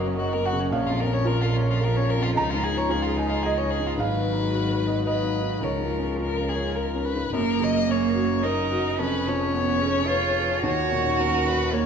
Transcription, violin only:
0, 0, Header, 1, 2, 480
1, 0, Start_track
1, 0, Key_signature, 6, "major"
1, 0, Tempo, 542986
1, 633, Time_signature, 3, 2, 24, 8
1, 3997, Tempo, 562324
1, 6877, Tempo, 547445
1, 10352, End_track
2, 0, Start_track
2, 0, Title_t, "Violin"
2, 0, Program_c, 0, 40
2, 66, Note_on_c, 0, 61, 55
2, 172, Note_on_c, 0, 66, 58
2, 186, Note_off_c, 0, 61, 0
2, 289, Note_on_c, 0, 70, 60
2, 303, Note_off_c, 0, 66, 0
2, 402, Note_on_c, 0, 66, 69
2, 415, Note_off_c, 0, 70, 0
2, 530, Note_on_c, 0, 61, 53
2, 543, Note_off_c, 0, 66, 0
2, 635, Note_off_c, 0, 61, 0
2, 640, Note_on_c, 0, 61, 64
2, 769, Note_on_c, 0, 65, 60
2, 783, Note_off_c, 0, 61, 0
2, 886, Note_on_c, 0, 70, 67
2, 899, Note_off_c, 0, 65, 0
2, 1003, Note_on_c, 0, 73, 66
2, 1017, Note_off_c, 0, 70, 0
2, 1118, Note_on_c, 0, 70, 67
2, 1132, Note_off_c, 0, 73, 0
2, 1251, Note_on_c, 0, 65, 58
2, 1264, Note_off_c, 0, 70, 0
2, 1377, Note_on_c, 0, 61, 59
2, 1390, Note_off_c, 0, 65, 0
2, 1509, Note_on_c, 0, 65, 57
2, 1522, Note_off_c, 0, 61, 0
2, 1626, Note_on_c, 0, 70, 58
2, 1639, Note_off_c, 0, 65, 0
2, 1735, Note_on_c, 0, 73, 62
2, 1748, Note_off_c, 0, 70, 0
2, 1860, Note_on_c, 0, 70, 69
2, 1873, Note_off_c, 0, 73, 0
2, 1966, Note_on_c, 0, 65, 60
2, 1979, Note_off_c, 0, 70, 0
2, 2072, Note_off_c, 0, 65, 0
2, 2078, Note_on_c, 0, 63, 66
2, 2209, Note_on_c, 0, 65, 60
2, 2223, Note_off_c, 0, 63, 0
2, 2330, Note_on_c, 0, 68, 66
2, 2344, Note_off_c, 0, 65, 0
2, 2450, Note_on_c, 0, 73, 60
2, 2463, Note_off_c, 0, 68, 0
2, 2569, Note_on_c, 0, 68, 63
2, 2582, Note_off_c, 0, 73, 0
2, 2672, Note_on_c, 0, 65, 54
2, 2685, Note_off_c, 0, 68, 0
2, 2801, Note_on_c, 0, 63, 57
2, 2814, Note_off_c, 0, 65, 0
2, 2908, Note_on_c, 0, 65, 61
2, 2921, Note_off_c, 0, 63, 0
2, 3031, Note_on_c, 0, 68, 56
2, 3044, Note_off_c, 0, 65, 0
2, 3160, Note_on_c, 0, 73, 60
2, 3173, Note_off_c, 0, 68, 0
2, 3276, Note_on_c, 0, 68, 59
2, 3289, Note_off_c, 0, 73, 0
2, 3418, Note_on_c, 0, 65, 52
2, 3431, Note_off_c, 0, 68, 0
2, 3523, Note_off_c, 0, 65, 0
2, 3528, Note_on_c, 0, 71, 62
2, 4437, Note_off_c, 0, 71, 0
2, 4465, Note_on_c, 0, 71, 56
2, 4944, Note_on_c, 0, 70, 47
2, 4957, Note_off_c, 0, 71, 0
2, 5378, Note_off_c, 0, 70, 0
2, 5435, Note_on_c, 0, 70, 62
2, 5675, Note_on_c, 0, 68, 55
2, 5687, Note_off_c, 0, 70, 0
2, 5901, Note_on_c, 0, 70, 52
2, 5913, Note_off_c, 0, 68, 0
2, 6154, Note_on_c, 0, 71, 61
2, 6167, Note_off_c, 0, 70, 0
2, 6397, Note_off_c, 0, 71, 0
2, 6409, Note_on_c, 0, 70, 72
2, 6656, Note_on_c, 0, 75, 77
2, 6669, Note_off_c, 0, 70, 0
2, 6887, Note_on_c, 0, 73, 64
2, 6900, Note_off_c, 0, 75, 0
2, 7366, Note_on_c, 0, 70, 63
2, 7379, Note_off_c, 0, 73, 0
2, 7840, Note_off_c, 0, 70, 0
2, 7845, Note_on_c, 0, 71, 64
2, 8094, Note_on_c, 0, 73, 69
2, 8107, Note_off_c, 0, 71, 0
2, 9292, Note_off_c, 0, 73, 0
2, 9308, Note_on_c, 0, 73, 63
2, 9777, Note_on_c, 0, 70, 61
2, 9790, Note_off_c, 0, 73, 0
2, 10011, Note_on_c, 0, 71, 65
2, 10024, Note_off_c, 0, 70, 0
2, 10245, Note_on_c, 0, 73, 59
2, 10259, Note_off_c, 0, 71, 0
2, 10352, Note_off_c, 0, 73, 0
2, 10352, End_track
0, 0, End_of_file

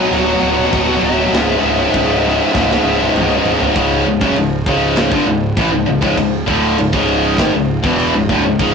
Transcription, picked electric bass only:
0, 0, Header, 1, 2, 480
1, 0, Start_track
1, 0, Tempo, 604839
1, 1063, Time_signature, 4, 2, 24, 8
1, 6939, End_track
2, 0, Start_track
2, 0, Title_t, "Picked electric bass"
2, 0, Program_c, 0, 34
2, 89, Note_on_c, 0, 26, 97
2, 274, Note_off_c, 0, 26, 0
2, 339, Note_on_c, 0, 26, 84
2, 520, Note_off_c, 0, 26, 0
2, 577, Note_on_c, 0, 26, 94
2, 759, Note_off_c, 0, 26, 0
2, 816, Note_on_c, 0, 26, 92
2, 999, Note_off_c, 0, 26, 0
2, 1056, Note_on_c, 0, 25, 99
2, 1238, Note_off_c, 0, 25, 0
2, 1294, Note_on_c, 0, 25, 90
2, 1477, Note_off_c, 0, 25, 0
2, 1541, Note_on_c, 0, 25, 92
2, 1901, Note_off_c, 0, 25, 0
2, 2019, Note_on_c, 0, 25, 92
2, 2200, Note_off_c, 0, 25, 0
2, 2257, Note_on_c, 0, 25, 81
2, 2438, Note_off_c, 0, 25, 0
2, 2503, Note_on_c, 0, 25, 94
2, 2682, Note_off_c, 0, 25, 0
2, 2741, Note_on_c, 0, 25, 95
2, 2921, Note_off_c, 0, 25, 0
2, 2984, Note_on_c, 0, 25, 92
2, 3206, Note_off_c, 0, 25, 0
2, 3220, Note_on_c, 0, 25, 75
2, 3333, Note_off_c, 0, 25, 0
2, 3344, Note_on_c, 0, 30, 98
2, 3455, Note_off_c, 0, 30, 0
2, 3458, Note_on_c, 0, 25, 82
2, 3683, Note_off_c, 0, 25, 0
2, 3698, Note_on_c, 0, 25, 91
2, 4035, Note_off_c, 0, 25, 0
2, 4056, Note_on_c, 0, 31, 104
2, 4171, Note_off_c, 0, 31, 0
2, 4179, Note_on_c, 0, 25, 73
2, 4404, Note_off_c, 0, 25, 0
2, 4419, Note_on_c, 0, 33, 100
2, 4529, Note_off_c, 0, 33, 0
2, 4534, Note_on_c, 0, 25, 74
2, 4650, Note_off_c, 0, 25, 0
2, 4661, Note_on_c, 0, 25, 82
2, 4774, Note_off_c, 0, 25, 0
2, 4779, Note_on_c, 0, 25, 104
2, 4892, Note_off_c, 0, 25, 0
2, 4901, Note_on_c, 0, 25, 84
2, 5125, Note_off_c, 0, 25, 0
2, 5140, Note_on_c, 0, 26, 86
2, 5365, Note_off_c, 0, 26, 0
2, 5387, Note_on_c, 0, 25, 73
2, 5493, Note_off_c, 0, 25, 0
2, 5498, Note_on_c, 0, 25, 102
2, 5835, Note_off_c, 0, 25, 0
2, 5857, Note_on_c, 0, 32, 107
2, 5972, Note_off_c, 0, 32, 0
2, 5984, Note_on_c, 0, 25, 98
2, 6207, Note_off_c, 0, 25, 0
2, 6217, Note_on_c, 0, 28, 91
2, 6444, Note_off_c, 0, 28, 0
2, 6466, Note_on_c, 0, 25, 82
2, 6577, Note_off_c, 0, 25, 0
2, 6583, Note_on_c, 0, 26, 93
2, 6695, Note_off_c, 0, 26, 0
2, 6700, Note_on_c, 0, 25, 85
2, 6814, Note_off_c, 0, 25, 0
2, 6819, Note_on_c, 0, 25, 99
2, 6939, Note_off_c, 0, 25, 0
2, 6939, End_track
0, 0, End_of_file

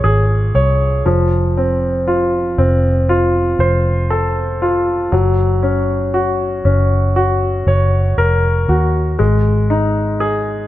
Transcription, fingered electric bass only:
0, 0, Header, 1, 2, 480
1, 0, Start_track
1, 0, Tempo, 1016949
1, 499, Time_signature, 4, 2, 24, 8
1, 5038, End_track
2, 0, Start_track
2, 0, Title_t, "Fingered electric bass"
2, 0, Program_c, 0, 33
2, 19, Note_on_c, 0, 32, 67
2, 242, Note_off_c, 0, 32, 0
2, 258, Note_on_c, 0, 36, 54
2, 481, Note_off_c, 0, 36, 0
2, 500, Note_on_c, 0, 29, 67
2, 1200, Note_off_c, 0, 29, 0
2, 1219, Note_on_c, 0, 29, 72
2, 1680, Note_off_c, 0, 29, 0
2, 1694, Note_on_c, 0, 29, 67
2, 2398, Note_off_c, 0, 29, 0
2, 2418, Note_on_c, 0, 30, 69
2, 3120, Note_off_c, 0, 30, 0
2, 3138, Note_on_c, 0, 30, 70
2, 3600, Note_off_c, 0, 30, 0
2, 3619, Note_on_c, 0, 30, 68
2, 3842, Note_off_c, 0, 30, 0
2, 3858, Note_on_c, 0, 29, 63
2, 4082, Note_off_c, 0, 29, 0
2, 4099, Note_on_c, 0, 39, 64
2, 4322, Note_off_c, 0, 39, 0
2, 4340, Note_on_c, 0, 32, 79
2, 5038, Note_off_c, 0, 32, 0
2, 5038, End_track
0, 0, End_of_file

